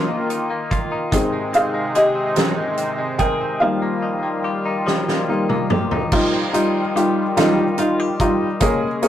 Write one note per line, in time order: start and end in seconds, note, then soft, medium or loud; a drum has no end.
0.00 1.10 D#3 medium
0.00 1.12 D#3 medium
0.00 1.09 A#3 medium
0.00 0.29 D#4 soft
0.00 0.67 D#4 soft
0.00 0.70 F4 medium
0.00 1.10 F4 medium
0.00 0.66 A#4 medium
0.09 0.49 A#3 soft
0.30 0.91 D#4 soft
0.30 closed hi-hat soft
0.50 1.20 A#3 medium
0.71 1.20 F4 medium
0.71 kick medium
0.71 closed hi-hat soft
0.92 1.53 D#4 medium
1.11 3.57 G#2 soft
1.11 3.58 C3 medium
1.11 2.36 D#3 medium
1.11 3.57 D#3 soft
1.11 3.58 G#3 medium
1.11 3.58 C4 medium
1.11 3.58 D#4 medium
1.11 1.51 G#4 medium
1.11 kick loud
1.11 closed hi-hat medium
1.33 1.73 G#3 soft
1.53 2.14 C4 medium
1.53 1.93 G#4 medium
1.53 1.97 F5 medium
1.53 closed hi-hat medium
1.74 2.56 G#3 medium
1.95 3.16 G4 medium
1.95 3.18 G#4 medium
1.95 3.23 D#5 loud
1.95 closed hi-hat soft
2.15 2.77 C4 soft
2.36 3.61 D#3 medium
2.36 snare loud
2.36 closed hi-hat medium
2.57 2.97 G#3 medium
2.78 3.40 C4 medium
2.78 closed hi-hat soft
2.98 3.69 G#3 medium
3.18 3.69 G#4 medium
3.18 3.59 A#4 medium
3.18 3.62 G5 medium
3.18 kick medium
3.18 closed hi-hat soft
3.41 3.69 C4 soft
3.60 6.09 D#3 medium
3.60 5.27 D#3 soft
3.60 4.86 F3 medium
3.60 6.09 G3 medium
3.60 5.27 G3 soft
3.60 5.27 A#3 medium
3.60 6.09 F4 medium
3.60 5.66 A#4 medium
3.60 5.65 F5 medium
3.82 4.23 A#3 medium
4.02 4.65 D#4 medium
4.23 5.07 A#3 medium
4.44 5.70 G4 medium
4.65 5.29 D#4 medium
4.87 6.12 F3 medium
4.87 snare medium
5.08 5.49 A#3 medium
5.08 snare medium
5.28 5.66 D#3 soft
5.28 5.66 G3 soft
5.28 5.66 A#3 medium
5.28 5.91 D#4 soft
5.49 8.61 A#3 medium
5.49 mid tom medium
5.70 6.96 G4 medium
5.70 mid tom medium
5.91 6.54 D#4 medium
5.91 floor tom medium
6.12 8.59 D#3 medium
6.12 9.08 F3 medium
6.12 6.38 G3 medium
6.12 8.59 G3 medium
6.12 6.38 D#4 medium
6.12 6.38 F4 medium
6.12 8.59 F4 medium
6.12 kick loud
6.12 crash loud
6.53 6.79 G3 medium
6.53 6.79 D#4 medium
6.53 7.37 D#4 medium
6.53 6.80 F4 medium
6.53 closed hi-hat medium
6.95 7.21 G3 medium
6.95 7.21 D#4 medium
6.95 7.22 F4 medium
6.95 7.78 G4 medium
6.95 closed hi-hat soft
7.37 7.63 G3 medium
7.37 7.63 D#4 medium
7.37 8.19 D#4 medium
7.37 7.63 F4 loud
7.37 snare loud
7.37 closed hi-hat medium
7.78 8.04 D#4 medium
7.78 8.00 F4 medium
7.78 8.04 F4 medium
7.78 closed hi-hat medium
8.00 8.69 G4 medium
8.20 8.46 G3 medium
8.20 8.69 D#4 medium
8.20 8.46 D#4 medium
8.20 8.46 F4 medium
8.20 kick medium
8.20 closed hi-hat medium
8.60 9.08 C#3 medium
8.60 9.08 G#3 medium
8.60 8.86 A#3 medium
8.60 9.08 A#3 medium
8.60 8.86 C#4 medium
8.60 9.08 G#4 medium
8.60 8.87 G#4 loud
8.60 kick loud
8.60 closed hi-hat medium
9.02 9.08 A#3 medium
9.02 9.08 C#4 medium
9.02 9.08 G#4 medium
9.02 closed hi-hat medium